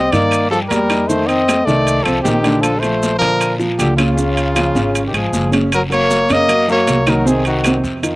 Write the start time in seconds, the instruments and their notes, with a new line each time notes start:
Already playing: trombone C4, trumpet D#5
0.11 upright bass G2, grand piano D#3 D#4, trombone A#3, trumpet D5, high timbale, short guiro, maracas
0.31 high conga, high timbale, long guiro, claves, maracas
0.51 trombone F3, grand piano G3 G4, trumpet A4, high conga, maracas
0.68 upright bass F2, trombone G3, trumpet A#4, high conga, high timbale, low timbale, short guiro, maracas
0.89 grand piano D#4 D#5, high conga, high timbale, short guiro, claves, maracas
1.08 grand piano D#3 D#4, trombone A3, trumpet C5, high conga, long guiro, maracas
1.27 trombone C4, trumpet D#5, high conga, high timbale, maracas
1.48 grand piano A3 A4, high conga, high timbale, short guiro, claves, maracas
1.65 upright bass C2, grand piano D#3 D#4, trombone A3, trumpet D5, short guiro, maracas
1.86 high conga, high timbale, long guiro, maracas
2.03 upright bass C2, trombone F3, grand piano C4 C5, trumpet A4, high conga, high timbale, claves, maracas
2.22 upright bass A#1, trombone D#3, trumpet G4, high conga, low timbale, short guiro, maracas
2.43 grand piano D3 D4, high conga, high timbale, short guiro, maracas
2.61 trombone F3, trumpet A4, high conga, high timbale, long guiro, claves, maracas
2.79 grand piano F3 F4, trombone A3, trumpet C5, high timbale
2.84 high conga, maracas
3.03 high conga, short guiro, maracas
3.18 upright bass A#2, grand piano D3 D4, trombone F3, trumpet A#4, high timbale, short guiro, maracas
3.23 high conga
3.41 high conga, high timbale, long guiro, claves, maracas
3.59 grand piano F3 F4, high conga, maracas
3.78 upright bass C#2, trombone D3, trumpet G4, high conga, high timbale, short guiro, maracas
3.97 trombone C#3, grand piano C#4 C#5, trumpet F4, high conga, high timbale, short guiro, claves, maracas
4.17 grand piano C#3 C#4, long guiro, maracas
4.37 high conga, high timbale, maracas
4.55 grand piano F3 F4, high conga, high timbale, short guiro, claves, maracas
4.75 upright bass G#1, grand piano C#3 C#4, high conga, short guiro, maracas
4.95 high conga, high timbale, long guiro, maracas
5.07 trombone D#3, trumpet G4
5.14 upright bass G#1, trombone F3, grand piano G#3 G#4, trumpet G#4, high conga, high timbale, claves, maracas
5.33 upright bass F#1, high conga, short guiro, maracas
5.52 grand piano C#3 C#4, high conga, high timbale, short guiro, maracas
5.72 trombone F#3, trumpet A#4, high conga, high timbale, long guiro, claves, maracas
5.90 grand piano F#3 F#4 A#4, trombone A#3, trumpet C#5, high conga, high timbale, maracas
6.10 high conga, short guiro, maracas
6.29 upright bass F#2, grand piano C#3 C#4 C#5, trombone A#3, trumpet D#5, high conga, high timbale, short guiro, maracas
6.49 grand piano F#3 F#4 A#4, high conga, high timbale, long guiro, claves, maracas
6.68 grand piano F#3 F#4 A#4, trombone A#3, trumpet C#5, high conga, maracas
6.87 upright bass C2, high conga, high timbale, low timbale, short guiro, maracas
7.07 grand piano D#3 D#4 F#4, trombone F#3, trumpet A#4, high conga, high timbale, short guiro, claves, maracas
7.25 grand piano C3 C4 C5, trombone D#3, trumpet G#4, long guiro, maracas
7.45 trombone D#3, trumpet F#4, high conga, high timbale, maracas
7.64 grand piano C3 C4 C5, high conga, high timbale, short guiro, claves, maracas
7.84 upright bass F2, high conga, short guiro, maracas
8.02 grand piano D#3 D#4 F4, high conga, high timbale, long guiro, maracas